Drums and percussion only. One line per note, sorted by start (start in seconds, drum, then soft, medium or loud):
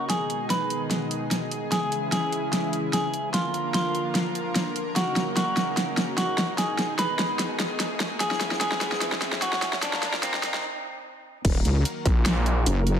0.10 snare medium
0.10 closed hi-hat medium
0.30 closed hi-hat soft
0.50 snare medium
0.50 closed hi-hat medium
0.70 closed hi-hat medium
0.91 snare soft
0.91 closed hi-hat medium
1.11 closed hi-hat medium
1.31 snare medium
1.31 closed hi-hat medium
1.51 closed hi-hat medium
1.72 snare medium
1.72 closed hi-hat medium
1.92 closed hi-hat soft
2.12 snare medium
2.12 closed hi-hat medium
2.32 closed hi-hat medium
2.53 snare medium
2.53 closed hi-hat medium
2.73 closed hi-hat medium
2.93 snare medium
2.93 closed hi-hat medium
3.14 closed hi-hat medium
3.34 snare medium
3.34 closed hi-hat medium
3.54 closed hi-hat soft
3.74 snare medium
3.74 closed hi-hat medium
3.95 closed hi-hat soft
4.15 snare medium
4.15 closed hi-hat medium
4.35 closed hi-hat medium
4.55 snare medium
4.55 closed hi-hat medium
4.76 closed hi-hat medium
4.96 snare medium
4.96 closed hi-hat medium
5.16 snare medium
5.16 closed hi-hat soft
5.37 snare medium
5.37 closed hi-hat medium
5.57 snare medium
5.57 closed hi-hat soft
5.77 snare medium
5.77 closed hi-hat medium
5.97 snare medium
5.97 closed hi-hat soft
6.18 snare medium
6.18 closed hi-hat medium
6.38 snare medium
6.38 closed hi-hat soft
6.58 snare medium
6.58 closed hi-hat medium
6.79 snare medium
6.79 closed hi-hat soft
6.99 snare medium
6.99 closed hi-hat medium
7.19 snare medium
7.19 closed hi-hat soft
7.39 snare medium
7.39 closed hi-hat medium
7.60 snare medium
7.60 closed hi-hat soft
7.80 snare medium
7.80 closed hi-hat medium
8.00 snare medium
8.00 closed hi-hat soft
8.20 snare medium
8.20 closed hi-hat medium
8.31 snare medium
8.41 snare medium
8.41 closed hi-hat soft
8.51 snare medium
8.61 snare loud
8.61 closed hi-hat medium
8.72 snare medium
8.81 snare medium
8.81 closed hi-hat soft
8.92 snare medium
9.01 snare medium
9.01 closed hi-hat medium
9.12 snare medium
9.22 snare loud
9.22 closed hi-hat medium
9.32 snare medium
9.42 snare loud
9.42 closed hi-hat medium
9.53 snare medium
9.62 snare loud
9.62 closed hi-hat medium
9.73 snare medium
9.83 snare loud
9.83 closed hi-hat medium
9.93 snare medium
10.03 snare loud
10.03 closed hi-hat medium
10.13 snare medium
10.23 snare loud
10.23 closed hi-hat medium
10.34 snare medium
10.43 snare loud
10.43 closed hi-hat medium
10.54 snare medium
11.45 kick loud
11.45 closed hi-hat medium
11.45 crash loud
11.65 closed hi-hat medium
11.85 closed hi-hat medium
12.06 kick loud
12.06 closed hi-hat medium
12.26 snare loud
12.26 closed hi-hat medium
12.46 closed hi-hat medium
12.66 closed hi-hat medium
12.87 closed hi-hat medium